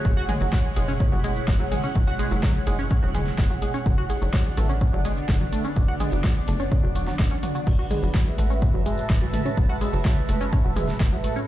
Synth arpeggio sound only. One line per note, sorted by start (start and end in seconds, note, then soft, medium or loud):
0.05 0.09 F#3 medium
0.05 0.09 F#4 medium
0.17 0.24 F#4 loud
0.17 0.24 F#5 medium
0.29 0.36 G#3 loud
0.29 0.36 G#4 medium
0.41 0.45 F#3 medium
0.41 0.45 F#4 medium
0.53 0.63 F#3 medium
0.53 0.63 F#4 medium
0.76 0.87 G#3 medium
0.76 0.87 G#4 medium
0.88 0.93 C#4 loud
0.88 0.93 C#5 medium
1.00 1.04 C#4 medium
1.00 1.04 C#5 medium
1.12 1.19 F#3 medium
1.12 1.19 F#4 medium
1.24 1.31 G#3 loud
1.24 1.31 G#4 medium
1.60 1.64 F#3 medium
1.60 1.64 F#4 medium
1.72 1.82 G#3 medium
1.72 1.82 G#4 medium
1.84 1.88 C#4 loud
1.84 1.88 C#5 medium
1.95 2.00 F#3 medium
1.95 2.00 F#4 medium
2.07 2.14 F#4 loud
2.07 2.14 F#5 medium
2.19 2.26 G#3 loud
2.19 2.26 G#4 medium
2.31 2.35 F#3 medium
2.31 2.35 F#4 medium
2.43 2.54 F#3 medium
2.43 2.54 F#4 medium
2.67 2.78 G#3 medium
2.67 2.78 G#4 medium
2.79 2.83 C#4 loud
2.79 2.83 C#5 medium
2.91 2.95 C#4 medium
2.91 2.95 C#5 medium
3.03 3.10 F#3 medium
3.03 3.10 F#4 medium
3.15 3.22 G#3 loud
3.15 3.22 G#4 medium
3.50 3.54 F#3 medium
3.50 3.55 F#4 medium
3.62 3.73 G#3 medium
3.62 3.73 G#4 medium
3.74 3.78 C#4 loud
3.74 3.78 C#5 medium
3.86 3.90 F#3 medium
3.86 3.90 F#4 medium
3.98 4.05 F#4 loud
3.98 4.05 F#5 medium
4.10 4.17 G#3 loud
4.10 4.17 G#4 medium
4.22 4.26 F#3 medium
4.22 4.26 F#4 medium
4.34 4.44 F#3 medium
4.34 4.44 F#4 medium
4.57 4.68 A3 medium
4.57 4.68 A4 medium
4.69 4.74 C#4 loud
4.69 4.74 C#5 medium
4.81 4.85 C#4 medium
4.81 4.85 C#5 medium
4.93 5.00 F#3 medium
4.93 5.00 F#4 medium
5.05 5.12 G#3 loud
5.05 5.12 G#4 medium
5.41 5.45 F#3 medium
5.41 5.45 F#4 medium
5.53 5.63 A3 medium
5.53 5.63 A4 medium
5.65 5.69 C#4 loud
5.65 5.69 C#5 medium
5.76 5.81 F#3 medium
5.76 5.81 F#4 medium
5.88 5.95 F#4 loud
5.88 5.95 F#5 medium
6.00 6.07 G#3 loud
6.00 6.07 G#4 medium
6.12 6.16 F#3 medium
6.12 6.16 F#4 medium
6.24 6.35 F#3 medium
6.24 6.35 F#4 medium
6.48 6.58 A3 medium
6.48 6.58 A4 medium
6.60 6.64 C#4 loud
6.60 6.64 C#5 medium
6.72 6.76 C#4 medium
6.72 6.76 C#5 medium
6.84 6.91 F#3 medium
6.84 6.91 F#4 medium
6.95 7.06 F#3 medium
6.95 7.06 F#4 medium
7.07 7.14 F#3 medium
7.07 7.14 F#4 medium
7.31 7.35 C#4 loud
7.31 7.35 C#5 medium
7.43 7.54 F#3 medium
7.43 7.54 F#4 medium
7.55 7.59 F#3 loud
7.55 7.59 F#4 medium
7.67 7.71 F#3 medium
7.67 7.71 F#4 medium
7.79 7.86 F#4 loud
7.79 7.86 F#5 medium
7.91 7.98 G#3 loud
7.91 7.98 G#4 medium
8.03 8.07 F#3 medium
8.03 8.07 F#4 medium
8.15 8.25 F#3 medium
8.15 8.25 F#4 medium
8.38 8.49 A3 medium
8.38 8.49 A4 medium
8.50 8.54 C#4 loud
8.50 8.54 C#5 medium
8.62 8.66 C#4 medium
8.62 8.66 C#5 medium
8.74 8.81 F#3 medium
8.74 8.81 F#4 medium
8.86 8.93 G#3 loud
8.86 8.93 G#4 medium
9.22 9.26 F#3 medium
9.22 9.26 F#4 medium
9.34 9.44 A3 medium
9.34 9.44 A4 medium
9.46 9.50 C#4 loud
9.46 9.50 C#5 medium
9.57 9.62 F#3 medium
9.57 9.62 F#4 medium
9.69 9.76 F#4 loud
9.69 9.76 F#5 medium
9.81 9.88 G#3 loud
9.81 9.88 G#4 medium
9.93 9.97 F#3 medium
9.93 9.97 F#4 medium
10.05 10.16 F#3 medium
10.05 10.16 F#4 medium
10.29 10.39 A3 medium
10.29 10.39 A4 medium
10.41 10.45 C#4 loud
10.41 10.45 C#5 medium
10.53 10.57 C#4 medium
10.53 10.57 C#5 medium
10.65 10.72 F#3 medium
10.65 10.72 F#4 medium
10.76 10.84 G#3 loud
10.76 10.84 G#4 medium
11.12 11.16 F#3 medium
11.12 11.16 F#4 medium
11.24 11.35 A3 medium
11.24 11.35 A4 medium
11.36 11.40 C#4 loud
11.36 11.40 C#5 medium